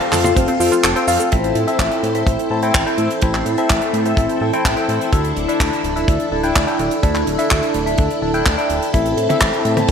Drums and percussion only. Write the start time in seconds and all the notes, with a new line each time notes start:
0.01 closed hi-hat
0.12 clap, open hi-hat, high tom, cabasa
0.24 closed hi-hat, high tom, cabasa
0.37 kick, closed hi-hat, cabasa
0.48 closed hi-hat
0.60 open hi-hat, cabasa
0.72 closed hi-hat, cabasa
0.84 clap, closed hi-hat, cabasa
0.96 closed hi-hat
1.08 open hi-hat, cabasa
1.20 closed hi-hat, cabasa
1.32 kick, closed hi-hat
1.44 closed hi-hat
1.55 closed hi-hat
1.68 closed hi-hat
1.79 kick, clap, closed hi-hat
1.91 closed hi-hat
2.04 closed hi-hat
2.15 closed hi-hat
2.27 kick, closed hi-hat
2.39 closed hi-hat
2.63 closed hi-hat
2.75 kick, clap, closed hi-hat
2.87 closed hi-hat
2.98 closed hi-hat
3.11 closed hi-hat
3.22 kick, closed hi-hat
3.34 clap, closed hi-hat
3.46 closed hi-hat
3.58 closed hi-hat
3.70 kick, clap, closed hi-hat
3.82 closed hi-hat
3.94 closed hi-hat
4.06 closed hi-hat
4.17 kick, closed hi-hat
4.29 closed hi-hat
4.53 closed hi-hat
4.65 kick, clap, closed hi-hat
4.77 closed hi-hat
4.89 closed hi-hat
5.01 closed hi-hat
5.13 kick, closed hi-hat
5.24 closed hi-hat
5.36 closed hi-hat
5.49 closed hi-hat
5.60 kick, clap, closed hi-hat
5.73 closed hi-hat
5.84 closed hi-hat
5.97 closed hi-hat
6.08 kick, closed hi-hat
6.20 closed hi-hat
6.44 closed hi-hat
6.56 kick, clap, closed hi-hat
6.68 closed hi-hat
6.79 closed hi-hat
6.91 closed hi-hat
7.03 kick, closed hi-hat
7.15 clap, closed hi-hat
7.27 closed hi-hat
7.39 closed hi-hat
7.51 kick, clap, closed hi-hat
7.63 closed hi-hat
7.74 closed hi-hat
7.87 closed hi-hat
7.98 kick, closed hi-hat
8.10 closed hi-hat
8.34 closed hi-hat
8.46 kick, clap, closed hi-hat
8.59 closed hi-hat
8.70 closed hi-hat
8.82 closed hi-hat
8.94 kick, closed hi-hat
9.06 closed hi-hat
9.18 closed hi-hat
9.30 closed hi-hat, high tom
9.41 kick, clap, closed hi-hat
9.53 closed hi-hat
9.65 closed hi-hat
9.77 closed hi-hat, high tom
9.88 closed hi-hat